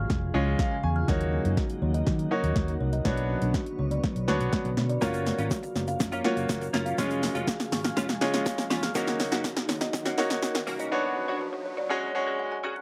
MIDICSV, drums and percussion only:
0, 0, Header, 1, 2, 480
1, 0, Start_track
1, 0, Tempo, 491803
1, 1057, Time_signature, 4, 2, 24, 8
1, 12508, End_track
2, 0, Start_track
2, 0, Title_t, "Drums"
2, 95, Note_on_c, 9, 38, 64
2, 98, Note_on_c, 9, 36, 103
2, 193, Note_off_c, 9, 38, 0
2, 196, Note_off_c, 9, 36, 0
2, 576, Note_on_c, 9, 36, 116
2, 576, Note_on_c, 9, 38, 67
2, 673, Note_off_c, 9, 36, 0
2, 673, Note_off_c, 9, 38, 0
2, 1056, Note_on_c, 9, 36, 100
2, 1057, Note_on_c, 9, 38, 70
2, 1154, Note_off_c, 9, 36, 0
2, 1155, Note_off_c, 9, 38, 0
2, 1178, Note_on_c, 9, 42, 55
2, 1275, Note_off_c, 9, 42, 0
2, 1416, Note_on_c, 9, 42, 62
2, 1513, Note_off_c, 9, 42, 0
2, 1534, Note_on_c, 9, 36, 113
2, 1536, Note_on_c, 9, 38, 68
2, 1632, Note_off_c, 9, 36, 0
2, 1633, Note_off_c, 9, 38, 0
2, 1655, Note_on_c, 9, 42, 47
2, 1753, Note_off_c, 9, 42, 0
2, 1897, Note_on_c, 9, 42, 71
2, 1994, Note_off_c, 9, 42, 0
2, 2016, Note_on_c, 9, 38, 75
2, 2019, Note_on_c, 9, 36, 100
2, 2114, Note_off_c, 9, 38, 0
2, 2117, Note_off_c, 9, 36, 0
2, 2139, Note_on_c, 9, 42, 49
2, 2237, Note_off_c, 9, 42, 0
2, 2379, Note_on_c, 9, 42, 69
2, 2476, Note_off_c, 9, 42, 0
2, 2496, Note_on_c, 9, 38, 79
2, 2497, Note_on_c, 9, 36, 111
2, 2594, Note_off_c, 9, 38, 0
2, 2595, Note_off_c, 9, 36, 0
2, 2618, Note_on_c, 9, 42, 44
2, 2715, Note_off_c, 9, 42, 0
2, 2858, Note_on_c, 9, 42, 65
2, 2956, Note_off_c, 9, 42, 0
2, 2977, Note_on_c, 9, 38, 79
2, 2978, Note_on_c, 9, 36, 108
2, 3074, Note_off_c, 9, 38, 0
2, 3075, Note_off_c, 9, 36, 0
2, 3098, Note_on_c, 9, 42, 57
2, 3196, Note_off_c, 9, 42, 0
2, 3335, Note_on_c, 9, 42, 66
2, 3432, Note_off_c, 9, 42, 0
2, 3456, Note_on_c, 9, 36, 115
2, 3457, Note_on_c, 9, 38, 80
2, 3553, Note_off_c, 9, 36, 0
2, 3554, Note_off_c, 9, 38, 0
2, 3576, Note_on_c, 9, 42, 47
2, 3674, Note_off_c, 9, 42, 0
2, 3818, Note_on_c, 9, 42, 70
2, 3916, Note_off_c, 9, 42, 0
2, 3939, Note_on_c, 9, 38, 81
2, 3941, Note_on_c, 9, 36, 107
2, 4036, Note_off_c, 9, 38, 0
2, 4038, Note_off_c, 9, 36, 0
2, 4060, Note_on_c, 9, 42, 50
2, 4158, Note_off_c, 9, 42, 0
2, 4179, Note_on_c, 9, 38, 82
2, 4276, Note_off_c, 9, 38, 0
2, 4300, Note_on_c, 9, 42, 70
2, 4398, Note_off_c, 9, 42, 0
2, 4417, Note_on_c, 9, 38, 85
2, 4418, Note_on_c, 9, 36, 118
2, 4515, Note_off_c, 9, 36, 0
2, 4515, Note_off_c, 9, 38, 0
2, 4539, Note_on_c, 9, 42, 43
2, 4636, Note_off_c, 9, 42, 0
2, 4657, Note_on_c, 9, 38, 83
2, 4755, Note_off_c, 9, 38, 0
2, 4778, Note_on_c, 9, 42, 69
2, 4875, Note_off_c, 9, 42, 0
2, 4897, Note_on_c, 9, 82, 74
2, 4898, Note_on_c, 9, 36, 107
2, 4898, Note_on_c, 9, 38, 85
2, 4994, Note_off_c, 9, 82, 0
2, 4995, Note_off_c, 9, 36, 0
2, 4995, Note_off_c, 9, 38, 0
2, 5012, Note_on_c, 9, 82, 46
2, 5019, Note_on_c, 9, 42, 60
2, 5110, Note_off_c, 9, 82, 0
2, 5116, Note_off_c, 9, 42, 0
2, 5137, Note_on_c, 9, 82, 53
2, 5139, Note_on_c, 9, 38, 91
2, 5235, Note_off_c, 9, 82, 0
2, 5236, Note_off_c, 9, 38, 0
2, 5256, Note_on_c, 9, 42, 67
2, 5258, Note_on_c, 9, 82, 47
2, 5354, Note_off_c, 9, 42, 0
2, 5355, Note_off_c, 9, 82, 0
2, 5376, Note_on_c, 9, 36, 114
2, 5377, Note_on_c, 9, 82, 67
2, 5378, Note_on_c, 9, 38, 87
2, 5473, Note_off_c, 9, 36, 0
2, 5475, Note_off_c, 9, 82, 0
2, 5476, Note_off_c, 9, 38, 0
2, 5498, Note_on_c, 9, 42, 49
2, 5499, Note_on_c, 9, 82, 43
2, 5595, Note_off_c, 9, 42, 0
2, 5597, Note_off_c, 9, 82, 0
2, 5618, Note_on_c, 9, 38, 89
2, 5620, Note_on_c, 9, 82, 48
2, 5715, Note_off_c, 9, 38, 0
2, 5718, Note_off_c, 9, 82, 0
2, 5734, Note_on_c, 9, 82, 45
2, 5738, Note_on_c, 9, 42, 70
2, 5832, Note_off_c, 9, 82, 0
2, 5835, Note_off_c, 9, 42, 0
2, 5857, Note_on_c, 9, 38, 91
2, 5858, Note_on_c, 9, 82, 78
2, 5859, Note_on_c, 9, 36, 105
2, 5955, Note_off_c, 9, 38, 0
2, 5956, Note_off_c, 9, 36, 0
2, 5956, Note_off_c, 9, 82, 0
2, 5976, Note_on_c, 9, 82, 54
2, 5978, Note_on_c, 9, 42, 51
2, 6074, Note_off_c, 9, 82, 0
2, 6076, Note_off_c, 9, 42, 0
2, 6095, Note_on_c, 9, 38, 93
2, 6193, Note_off_c, 9, 38, 0
2, 6217, Note_on_c, 9, 42, 67
2, 6218, Note_on_c, 9, 82, 48
2, 6314, Note_off_c, 9, 42, 0
2, 6315, Note_off_c, 9, 82, 0
2, 6336, Note_on_c, 9, 36, 114
2, 6336, Note_on_c, 9, 38, 97
2, 6338, Note_on_c, 9, 82, 67
2, 6433, Note_off_c, 9, 36, 0
2, 6433, Note_off_c, 9, 38, 0
2, 6436, Note_off_c, 9, 82, 0
2, 6457, Note_on_c, 9, 42, 43
2, 6462, Note_on_c, 9, 82, 49
2, 6555, Note_off_c, 9, 42, 0
2, 6559, Note_off_c, 9, 82, 0
2, 6576, Note_on_c, 9, 38, 93
2, 6576, Note_on_c, 9, 82, 46
2, 6674, Note_off_c, 9, 38, 0
2, 6674, Note_off_c, 9, 82, 0
2, 6696, Note_on_c, 9, 42, 67
2, 6700, Note_on_c, 9, 82, 51
2, 6794, Note_off_c, 9, 42, 0
2, 6797, Note_off_c, 9, 82, 0
2, 6816, Note_on_c, 9, 36, 105
2, 6816, Note_on_c, 9, 38, 98
2, 6816, Note_on_c, 9, 82, 79
2, 6913, Note_off_c, 9, 36, 0
2, 6913, Note_off_c, 9, 38, 0
2, 6913, Note_off_c, 9, 82, 0
2, 6932, Note_on_c, 9, 82, 44
2, 6937, Note_on_c, 9, 42, 57
2, 7029, Note_off_c, 9, 82, 0
2, 7034, Note_off_c, 9, 42, 0
2, 7056, Note_on_c, 9, 46, 78
2, 7056, Note_on_c, 9, 82, 53
2, 7057, Note_on_c, 9, 38, 98
2, 7153, Note_off_c, 9, 46, 0
2, 7154, Note_off_c, 9, 82, 0
2, 7155, Note_off_c, 9, 38, 0
2, 7175, Note_on_c, 9, 42, 66
2, 7177, Note_on_c, 9, 82, 47
2, 7272, Note_off_c, 9, 42, 0
2, 7275, Note_off_c, 9, 82, 0
2, 7294, Note_on_c, 9, 36, 112
2, 7296, Note_on_c, 9, 38, 102
2, 7299, Note_on_c, 9, 82, 67
2, 7391, Note_off_c, 9, 36, 0
2, 7394, Note_off_c, 9, 38, 0
2, 7396, Note_off_c, 9, 82, 0
2, 7416, Note_on_c, 9, 42, 47
2, 7417, Note_on_c, 9, 38, 100
2, 7419, Note_on_c, 9, 82, 44
2, 7513, Note_off_c, 9, 42, 0
2, 7514, Note_off_c, 9, 38, 0
2, 7516, Note_off_c, 9, 82, 0
2, 7537, Note_on_c, 9, 38, 101
2, 7538, Note_on_c, 9, 46, 72
2, 7539, Note_on_c, 9, 82, 49
2, 7635, Note_off_c, 9, 38, 0
2, 7636, Note_off_c, 9, 46, 0
2, 7636, Note_off_c, 9, 82, 0
2, 7657, Note_on_c, 9, 38, 100
2, 7657, Note_on_c, 9, 42, 70
2, 7657, Note_on_c, 9, 82, 49
2, 7754, Note_off_c, 9, 38, 0
2, 7754, Note_off_c, 9, 42, 0
2, 7755, Note_off_c, 9, 82, 0
2, 7776, Note_on_c, 9, 38, 100
2, 7778, Note_on_c, 9, 36, 105
2, 7782, Note_on_c, 9, 82, 80
2, 7874, Note_off_c, 9, 38, 0
2, 7876, Note_off_c, 9, 36, 0
2, 7880, Note_off_c, 9, 82, 0
2, 7897, Note_on_c, 9, 38, 101
2, 7897, Note_on_c, 9, 82, 52
2, 7898, Note_on_c, 9, 42, 53
2, 7994, Note_off_c, 9, 38, 0
2, 7994, Note_off_c, 9, 82, 0
2, 7996, Note_off_c, 9, 42, 0
2, 8015, Note_on_c, 9, 46, 72
2, 8016, Note_on_c, 9, 38, 100
2, 8112, Note_off_c, 9, 46, 0
2, 8114, Note_off_c, 9, 38, 0
2, 8137, Note_on_c, 9, 38, 109
2, 8138, Note_on_c, 9, 42, 71
2, 8139, Note_on_c, 9, 82, 47
2, 8234, Note_off_c, 9, 38, 0
2, 8235, Note_off_c, 9, 42, 0
2, 8236, Note_off_c, 9, 82, 0
2, 8256, Note_on_c, 9, 36, 119
2, 8256, Note_on_c, 9, 38, 105
2, 8257, Note_on_c, 9, 82, 70
2, 8354, Note_off_c, 9, 36, 0
2, 8354, Note_off_c, 9, 38, 0
2, 8355, Note_off_c, 9, 82, 0
2, 8376, Note_on_c, 9, 38, 103
2, 8376, Note_on_c, 9, 42, 44
2, 8380, Note_on_c, 9, 82, 49
2, 8474, Note_off_c, 9, 38, 0
2, 8474, Note_off_c, 9, 42, 0
2, 8477, Note_off_c, 9, 82, 0
2, 8495, Note_on_c, 9, 82, 48
2, 8496, Note_on_c, 9, 38, 103
2, 8497, Note_on_c, 9, 46, 81
2, 8593, Note_off_c, 9, 82, 0
2, 8594, Note_off_c, 9, 38, 0
2, 8595, Note_off_c, 9, 46, 0
2, 8617, Note_on_c, 9, 38, 100
2, 8617, Note_on_c, 9, 42, 69
2, 8617, Note_on_c, 9, 82, 49
2, 8715, Note_off_c, 9, 38, 0
2, 8715, Note_off_c, 9, 42, 0
2, 8715, Note_off_c, 9, 82, 0
2, 8735, Note_on_c, 9, 82, 78
2, 8736, Note_on_c, 9, 36, 112
2, 8737, Note_on_c, 9, 38, 108
2, 8833, Note_off_c, 9, 82, 0
2, 8834, Note_off_c, 9, 36, 0
2, 8835, Note_off_c, 9, 38, 0
2, 8852, Note_on_c, 9, 82, 47
2, 8857, Note_on_c, 9, 38, 106
2, 8858, Note_on_c, 9, 42, 57
2, 8950, Note_off_c, 9, 82, 0
2, 8955, Note_off_c, 9, 38, 0
2, 8955, Note_off_c, 9, 42, 0
2, 8975, Note_on_c, 9, 46, 77
2, 8977, Note_on_c, 9, 38, 107
2, 8977, Note_on_c, 9, 82, 54
2, 9073, Note_off_c, 9, 46, 0
2, 9075, Note_off_c, 9, 38, 0
2, 9075, Note_off_c, 9, 82, 0
2, 9094, Note_on_c, 9, 42, 66
2, 9096, Note_on_c, 9, 38, 108
2, 9096, Note_on_c, 9, 82, 49
2, 9192, Note_off_c, 9, 42, 0
2, 9193, Note_off_c, 9, 82, 0
2, 9194, Note_off_c, 9, 38, 0
2, 9214, Note_on_c, 9, 36, 111
2, 9216, Note_on_c, 9, 38, 110
2, 9218, Note_on_c, 9, 82, 69
2, 9312, Note_off_c, 9, 36, 0
2, 9314, Note_off_c, 9, 38, 0
2, 9316, Note_off_c, 9, 82, 0
2, 9336, Note_on_c, 9, 38, 106
2, 9336, Note_on_c, 9, 42, 49
2, 9339, Note_on_c, 9, 82, 45
2, 9433, Note_off_c, 9, 42, 0
2, 9434, Note_off_c, 9, 38, 0
2, 9437, Note_off_c, 9, 82, 0
2, 9455, Note_on_c, 9, 38, 112
2, 9456, Note_on_c, 9, 46, 67
2, 9457, Note_on_c, 9, 82, 48
2, 9553, Note_off_c, 9, 38, 0
2, 9554, Note_off_c, 9, 46, 0
2, 9555, Note_off_c, 9, 82, 0
2, 9573, Note_on_c, 9, 82, 49
2, 9574, Note_on_c, 9, 38, 106
2, 9574, Note_on_c, 9, 42, 74
2, 9671, Note_off_c, 9, 82, 0
2, 9672, Note_off_c, 9, 38, 0
2, 9672, Note_off_c, 9, 42, 0
2, 9695, Note_on_c, 9, 38, 109
2, 9698, Note_on_c, 9, 36, 111
2, 9701, Note_on_c, 9, 82, 79
2, 9792, Note_off_c, 9, 38, 0
2, 9796, Note_off_c, 9, 36, 0
2, 9799, Note_off_c, 9, 82, 0
2, 9815, Note_on_c, 9, 38, 115
2, 9816, Note_on_c, 9, 42, 51
2, 9817, Note_on_c, 9, 82, 55
2, 9912, Note_off_c, 9, 38, 0
2, 9914, Note_off_c, 9, 42, 0
2, 9914, Note_off_c, 9, 82, 0
2, 9932, Note_on_c, 9, 46, 71
2, 9934, Note_on_c, 9, 38, 110
2, 10030, Note_off_c, 9, 46, 0
2, 10032, Note_off_c, 9, 38, 0
2, 10055, Note_on_c, 9, 38, 116
2, 10056, Note_on_c, 9, 42, 73
2, 10059, Note_on_c, 9, 82, 50
2, 10153, Note_off_c, 9, 38, 0
2, 10154, Note_off_c, 9, 42, 0
2, 10157, Note_off_c, 9, 82, 0
2, 10175, Note_on_c, 9, 38, 118
2, 10177, Note_on_c, 9, 82, 70
2, 10272, Note_off_c, 9, 38, 0
2, 10275, Note_off_c, 9, 82, 0
2, 10295, Note_on_c, 9, 38, 115
2, 10295, Note_on_c, 9, 42, 45
2, 10301, Note_on_c, 9, 82, 49
2, 10393, Note_off_c, 9, 38, 0
2, 10393, Note_off_c, 9, 42, 0
2, 10398, Note_off_c, 9, 82, 0
2, 10415, Note_on_c, 9, 82, 48
2, 10417, Note_on_c, 9, 46, 82
2, 10512, Note_off_c, 9, 82, 0
2, 10515, Note_off_c, 9, 46, 0
2, 10536, Note_on_c, 9, 42, 71
2, 10538, Note_on_c, 9, 82, 54
2, 10634, Note_off_c, 9, 42, 0
2, 10635, Note_off_c, 9, 82, 0
2, 12508, End_track
0, 0, End_of_file